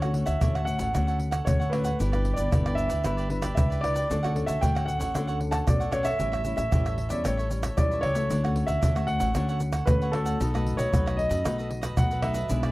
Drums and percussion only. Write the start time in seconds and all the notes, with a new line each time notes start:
0.02 pandeiro, tamborim, shaker, surdo
0.14 pandeiro
0.26 pandeiro, shaker, surdo
0.41 pandeiro, tamborim, shaker, surdo
0.55 pandeiro, tamborim, shaker
0.67 pandeiro, shaker
0.79 pandeiro, shaker, surdo
0.95 pandeiro, tamborim, shaker, surdo
1.08 pandeiro, shaker
1.19 pandeiro
1.32 pandeiro, tamborim, shaker, surdo
1.47 pandeiro, tamborim, shaker, surdo
1.61 pandeiro, shaker
1.73 pandeiro, tamborim
1.84 pandeiro, shaker
2.00 pandeiro, shaker, surdo
2.13 pandeiro, tamborim, shaker, surdo
2.25 pandeiro
2.37 pandeiro, shaker, surdo
2.52 pandeiro, tamborim, shaker, surdo
2.66 pandeiro, tamborim, shaker
2.78 pandeiro, shaker
2.90 pandeiro, shaker, surdo
3.04 pandeiro, tamborim, shaker, surdo
3.18 pandeiro, shaker
3.30 pandeiro
3.42 pandeiro, tamborim, shaker, surdo
3.57 pandeiro, tamborim, shaker, surdo
3.72 pandeiro, shaker
3.84 pandeiro, tamborim, surdo
3.96 pandeiro, shaker
4.11 pandeiro, shaker, surdo
4.24 pandeiro, tamborim, shaker, surdo
4.36 pandeiro
4.48 pandeiro, shaker, surdo
4.63 pandeiro, tamborim, shaker, surdo
4.76 pandeiro, tamborim, shaker
4.88 pandeiro, shaker
5.01 pandeiro, shaker, surdo
5.15 pandeiro, tamborim, shaker, surdo
5.28 pandeiro, shaker
5.41 pandeiro
5.52 pandeiro, tamborim, shaker, surdo
5.67 pandeiro, tamborim, shaker, surdo
5.81 pandeiro, shaker
5.92 pandeiro, tamborim, shaker, surdo
6.05 pandeiro, shaker
6.20 pandeiro, shaker, surdo
6.33 pandeiro, tamborim, shaker, surdo
6.45 pandeiro, shaker
6.58 pandeiro, shaker, surdo
6.72 pandeiro, tamborim, shaker, surdo
6.86 pandeiro, tamborim, shaker
6.98 pandeiro
7.10 pandeiro, shaker, surdo
7.25 pandeiro, tamborim, shaker, surdo
7.39 pandeiro, shaker
7.51 pandeiro, shaker
7.63 pandeiro, tamborim, shaker, surdo
7.78 pandeiro, tamborim, shaker, surdo
7.91 pandeiro, shaker
8.03 pandeiro, tamborim
8.15 pandeiro, shaker
8.30 pandeiro, shaker, surdo
8.45 pandeiro, tamborim, shaker, surdo
8.56 pandeiro
8.68 pandeiro, shaker, surdo
8.83 pandeiro, tamborim, shaker, surdo
8.96 pandeiro, tamborim, shaker
9.08 pandeiro
9.20 pandeiro, shaker, surdo
9.35 pandeiro, tamborim, shaker, surdo
9.49 pandeiro, shaker
9.60 pandeiro, shaker
9.73 pandeiro, tamborim, shaker, surdo
9.87 pandeiro, tamborim, shaker, surdo
10.02 pandeiro, shaker
10.13 pandeiro, tamborim
10.26 pandeiro, shaker
10.41 pandeiro, shaker, surdo
10.55 pandeiro, tamborim, shaker, surdo
10.66 pandeiro
10.79 pandeiro, shaker, surdo
10.94 pandeiro, tamborim, shaker, surdo
11.08 pandeiro, tamborim, shaker
11.19 pandeiro
11.31 pandeiro, shaker, surdo
11.45 pandeiro, tamborim, shaker, surdo
11.59 pandeiro, shaker
11.71 pandeiro
11.83 pandeiro, tamborim, shaker, surdo
11.97 pandeiro, tamborim, shaker, surdo
12.11 pandeiro, shaker
12.22 pandeiro, tamborim
12.34 pandeiro, shaker
12.49 pandeiro, shaker, surdo
12.63 pandeiro, tamborim, shaker, surdo